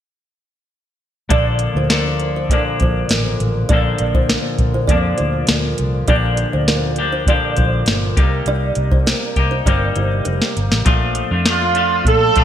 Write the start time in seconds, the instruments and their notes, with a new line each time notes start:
1.29 fingered electric bass A#1, clean electric guitar A#2 D3 F3 A#3 D4 A4, kalimba D5, kick, closed hi-hat
1.59 closed hi-hat
1.75 fingered electric bass D2, kalimba C5
1.90 clean electric guitar F3 A#3 D4 A4, kalimba A#4, snare, closed hi-hat
2.20 closed hi-hat
2.36 kalimba C5
2.49 clean electric guitar A#2 D3 F3 A#3, kalimba D5, kick, closed hi-hat
2.54 clean electric guitar D4
2.80 fingered electric bass A#1, kalimba C5, kick, closed hi-hat
3.09 fingered electric bass A1, kalimba A#4, snare, closed hi-hat
3.40 fingered electric bass A1, closed hi-hat
3.69 fingered electric bass A#1, clean electric guitar A#2 D3 F3 A#3 D4, kalimba D5, kick, closed hi-hat
3.74 clean electric guitar A4
3.98 fingered electric bass A#1, closed hi-hat
4.14 kalimba C5, kick
4.29 kalimba A#4, snare, closed hi-hat
4.58 fingered electric bass A#1, kick, closed hi-hat
4.74 kalimba C5
4.88 fingered electric bass F2, clean electric guitar A#2 D3 F3 A#3 D4, kalimba D5, kick, closed hi-hat
5.18 fingered electric bass D2, kalimba C5, closed hi-hat
5.47 fingered electric bass D2, kalimba A#4, snare, closed hi-hat
5.78 fingered electric bass C2, closed hi-hat
6.08 fingered electric bass A#1, clean electric guitar A#2 D3 F3 A#3 D4 G4, kalimba D5, kick, closed hi-hat
6.37 closed hi-hat
6.53 fingered electric bass D2, kalimba C5
6.68 kalimba A#4, snare, closed hi-hat
6.96 clean electric guitar D4 G4, closed hi-hat
7.00 clean electric guitar F3 A#3
7.12 kalimba C5
7.26 clean electric guitar A#2 D3 F3 A#3 D4 G4, kalimba D5, kick, closed hi-hat
7.57 fingered electric bass A#1, kalimba C5, kick, closed hi-hat
7.86 fingered electric bass G1, kalimba A#4, snare, closed hi-hat
8.17 fingered electric bass C2, clean electric guitar C3 G3 A#3 D#4 G4, kick, closed hi-hat
8.46 fingered electric bass C2, kalimba D5, closed hi-hat
8.75 fingered electric bass C2, closed hi-hat
8.91 kalimba C5, kick
9.07 kalimba A#4, snare, closed hi-hat
9.36 fingered electric bass C2, clean electric guitar A#3 D#4 G4, kick, closed hi-hat
9.51 kalimba C5
9.66 fingered electric bass G1, clean electric guitar C3 G3 A#3 D#4, kalimba D5, kick, closed hi-hat
9.70 clean electric guitar G4
9.96 fingered electric bass G1, kalimba C5, closed hi-hat
10.25 fingered electric bass F1, kalimba A#4, closed hi-hat
10.42 snare
10.57 fingered electric bass G1, closed hi-hat
10.71 fingered electric bass A1, snare
10.85 fingered electric bass A#1, clean electric guitar A#2 F3 A3 D4 F4, kick, closed hi-hat
11.15 closed hi-hat
11.31 fingered electric bass F2, clean electric guitar A3 D4 F4
11.46 clean electric guitar F3 A3 D4 F4, snare, closed hi-hat
11.50 trumpet F4
11.74 clean electric guitar F3 A3 D4 F4, closed hi-hat
12.05 fingered electric bass A#2, trumpet A4, kick, closed hi-hat
12.36 fingered electric bass A#1, clean electric guitar F3 A3 D4 F4, kick, closed hi-hat